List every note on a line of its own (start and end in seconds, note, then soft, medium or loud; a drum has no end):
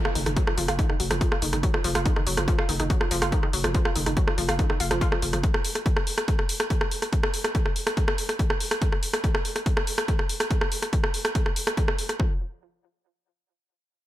0.00 downlifter medium
0.05 0.09 F4 medium
0.05 cross-stick medium
0.15 0.25 F1 loud
0.15 0.20 D#3 medium
0.15 open hi-hat loud
0.26 0.36 F1 medium
0.26 0.31 D#3 medium
0.26 cross-stick medium
0.26 closed hi-hat medium
0.36 0.41 F#3 medium
0.36 kick loud
0.36 closed hi-hat medium
0.47 0.52 F3 medium
0.47 cross-stick medium
0.58 0.68 F1 loud
0.58 0.62 F3 loud
0.58 open hi-hat loud
0.68 0.79 F1 medium
0.68 0.73 F4 medium
0.68 cross-stick medium
0.68 closed hi-hat medium
0.79 0.83 D#3 medium
0.79 kick loud
0.79 closed hi-hat medium
0.89 0.94 D#3 medium
0.89 cross-stick medium
1.00 1.10 F1 loud
1.00 1.04 F#3 medium
1.00 open hi-hat loud
1.11 1.21 F1 medium
1.11 1.15 F3 medium
1.11 cross-stick medium
1.11 closed hi-hat medium
1.21 1.26 F3 loud
1.21 kick loud
1.21 closed hi-hat medium
1.32 1.36 F4 medium
1.32 cross-stick medium
1.42 1.52 F1 loud
1.42 1.47 D#3 medium
1.42 open hi-hat loud
1.53 1.63 F1 medium
1.53 1.57 D#3 medium
1.53 cross-stick medium
1.53 closed hi-hat medium
1.63 1.68 F#3 medium
1.63 kick loud
1.63 closed hi-hat medium
1.74 1.78 F3 medium
1.74 cross-stick medium
1.84 1.95 F1 loud
1.84 1.89 F3 loud
1.84 open hi-hat loud
1.95 2.05 F1 medium
1.95 2.00 F4 medium
1.95 cross-stick medium
1.95 closed hi-hat medium
2.06 2.10 D#3 medium
2.06 kick loud
2.06 closed hi-hat medium
2.16 2.21 D#3 medium
2.16 cross-stick medium
2.27 2.37 F1 loud
2.27 2.31 F#3 medium
2.27 open hi-hat loud
2.37 2.48 F1 medium
2.37 2.42 F3 medium
2.37 cross-stick medium
2.37 closed hi-hat medium
2.48 2.52 F3 loud
2.48 kick loud
2.48 closed hi-hat medium
2.58 2.63 F4 medium
2.58 cross-stick medium
2.69 2.79 F1 loud
2.69 2.73 D#3 medium
2.69 open hi-hat loud
2.80 2.90 F1 medium
2.80 2.84 D#3 medium
2.80 cross-stick medium
2.80 closed hi-hat medium
2.90 2.95 F#3 medium
2.90 kick loud
2.90 closed hi-hat medium
3.01 3.05 F3 medium
3.01 cross-stick medium
3.11 3.21 F1 loud
3.11 3.16 F3 loud
3.11 open hi-hat loud
3.22 3.32 F1 medium
3.22 3.26 F4 medium
3.22 cross-stick medium
3.22 closed hi-hat medium
3.32 3.37 D#3 medium
3.32 kick loud
3.32 closed hi-hat medium
3.43 3.47 D#3 medium
3.43 cross-stick medium
3.53 3.64 F1 loud
3.53 3.58 F#3 medium
3.53 open hi-hat loud
3.64 3.74 F1 medium
3.64 3.69 F3 medium
3.64 cross-stick medium
3.64 closed hi-hat medium
3.74 3.79 F3 loud
3.74 kick loud
3.74 closed hi-hat medium
3.85 3.90 F4 medium
3.85 cross-stick medium
3.96 4.06 F1 loud
3.96 4.00 D#3 medium
3.96 open hi-hat loud
4.06 4.17 F1 medium
4.06 4.11 D#3 medium
4.06 cross-stick medium
4.06 closed hi-hat medium
4.17 4.21 F#3 medium
4.17 kick loud
4.17 closed hi-hat medium
4.27 4.32 F3 medium
4.27 cross-stick medium
4.38 4.48 F1 loud
4.38 4.42 F3 loud
4.38 open hi-hat loud
4.49 4.59 F1 medium
4.49 4.53 F4 medium
4.49 cross-stick medium
4.49 closed hi-hat medium
4.59 4.64 D#3 medium
4.59 kick loud
4.59 closed hi-hat medium
4.70 4.74 D#3 medium
4.70 cross-stick medium
4.80 4.90 F1 loud
4.80 4.87 F4 medium
4.80 open hi-hat loud
4.91 5.01 F1 medium
4.91 4.98 F3 loud
4.91 cross-stick medium
4.91 closed hi-hat medium
5.01 5.04 F4 loud
5.01 kick loud
5.01 closed hi-hat medium
5.12 5.19 F3 medium
5.12 cross-stick medium
5.22 5.33 F1 loud
5.22 5.27 F3 medium
5.22 open hi-hat loud
5.33 5.43 F1 medium
5.33 5.38 F3 medium
5.33 cross-stick medium
5.33 closed hi-hat medium
5.43 kick loud
5.43 closed hi-hat medium
5.54 cross-stick medium
5.65 open hi-hat loud
5.75 cross-stick medium
5.75 closed hi-hat medium
5.86 kick loud
5.86 closed hi-hat medium
5.97 cross-stick medium
6.07 open hi-hat loud
6.18 cross-stick loud
6.18 closed hi-hat medium
6.28 kick loud
6.28 closed hi-hat medium
6.39 cross-stick medium
6.49 open hi-hat loud
6.60 cross-stick loud
6.60 closed hi-hat medium
6.70 kick loud
6.70 closed hi-hat medium
6.81 cross-stick medium
6.91 open hi-hat loud
7.02 cross-stick medium
7.02 closed hi-hat medium
7.13 kick loud
7.13 closed hi-hat medium
7.23 cross-stick loud
7.34 open hi-hat loud
7.44 cross-stick loud
7.44 closed hi-hat medium
7.55 kick loud
7.55 closed hi-hat medium
7.66 cross-stick medium
7.76 open hi-hat loud
7.87 cross-stick loud
7.87 closed hi-hat medium
7.97 kick loud
7.97 closed hi-hat medium
8.08 cross-stick loud
8.18 open hi-hat loud
8.29 cross-stick medium
8.29 closed hi-hat medium
8.39 kick loud
8.39 closed hi-hat medium
8.50 cross-stick medium
8.60 open hi-hat loud
8.71 cross-stick loud
8.71 closed hi-hat medium
8.82 kick loud
8.82 closed hi-hat medium
8.92 cross-stick medium
9.03 open hi-hat loud
9.13 cross-stick loud
9.13 closed hi-hat medium
9.24 kick loud
9.24 closed hi-hat medium
9.35 cross-stick loud
9.45 open hi-hat loud
9.56 cross-stick medium
9.56 closed hi-hat medium
9.66 kick loud
9.66 closed hi-hat medium
9.77 cross-stick loud
9.87 open hi-hat loud
9.98 cross-stick loud
9.98 closed hi-hat medium
10.08 kick loud
10.08 closed hi-hat medium
10.19 cross-stick medium
10.29 open hi-hat loud
10.40 cross-stick loud
10.40 closed hi-hat medium
10.51 kick loud
10.51 closed hi-hat medium
10.61 cross-stick medium
10.72 open hi-hat loud
10.82 cross-stick medium
10.82 closed hi-hat medium
10.93 kick loud
10.93 closed hi-hat medium
11.04 cross-stick medium
11.14 open hi-hat loud
11.25 cross-stick loud
11.25 closed hi-hat medium
11.35 kick loud
11.35 closed hi-hat medium
11.46 cross-stick medium
11.56 open hi-hat loud
11.67 cross-stick loud
11.67 closed hi-hat medium
11.77 kick loud
11.77 closed hi-hat medium
11.88 cross-stick medium
11.98 open hi-hat loud
12.09 cross-stick medium
12.09 closed hi-hat medium
12.20 12.39 F3 medium
12.20 kick loud